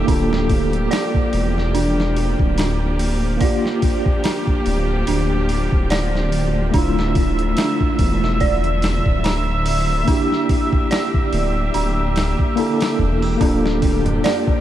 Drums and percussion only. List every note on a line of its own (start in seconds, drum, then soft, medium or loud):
0.08 kick loud
0.08 open hi-hat medium
0.33 snare medium
0.50 kick medium
0.50 open hi-hat medium
0.73 closed hi-hat soft
0.91 snare loud
0.91 open hi-hat medium
1.15 kick medium
1.33 open hi-hat medium
1.58 snare soft
1.75 open hi-hat medium
2.00 snare soft
2.16 open hi-hat medium
2.39 kick medium
2.58 snare loud
2.58 open hi-hat medium
2.99 open hi-hat medium
3.41 kick loud
3.41 open hi-hat medium
3.66 snare soft
3.82 kick medium
3.82 open hi-hat medium
4.06 kick medium
4.24 snare loud
4.24 open hi-hat medium
4.47 kick medium
4.66 open hi-hat medium
5.07 open hi-hat medium
5.49 open hi-hat medium
5.72 kick loud
5.90 snare loud
5.90 open hi-hat medium
6.15 snare soft
6.32 open hi-hat medium
6.74 kick loud
6.74 open hi-hat medium
6.99 snare medium
7.15 kick medium
7.15 open hi-hat medium
7.39 closed hi-hat soft
7.57 snare loud
7.57 open hi-hat medium
7.81 kick medium
7.99 kick loud
7.99 open hi-hat medium
8.24 snare soft
8.40 kick medium
8.40 open hi-hat medium
8.64 closed hi-hat soft
8.82 snare loud
8.82 open hi-hat medium
9.06 kick medium
9.24 snare loud
9.24 open hi-hat medium
9.66 open hi-hat medium
10.08 kick loud
10.08 open hi-hat medium
10.32 snare soft
10.49 kick medium
10.49 open hi-hat medium
10.73 kick loud
10.91 snare loud
10.91 open hi-hat medium
11.14 kick medium
11.33 open hi-hat medium
11.74 open hi-hat medium
12.16 snare loud
12.16 open hi-hat medium
12.39 kick medium
12.57 open hi-hat medium
12.81 snare loud
12.81 open hi-hat medium
12.99 kick medium
13.22 open hi-hat medium
13.41 kick loud
13.41 open hi-hat medium
13.41 tabla na medium
13.65 snare medium
13.65 tabla na soft
13.82 kick medium
13.82 open hi-hat medium
14.06 closed hi-hat soft
14.06 tabla na medium
14.06 tabla ge medium
14.24 snare loud
14.24 open hi-hat medium
14.24 tabla na medium
14.47 kick loud
14.47 tabla na soft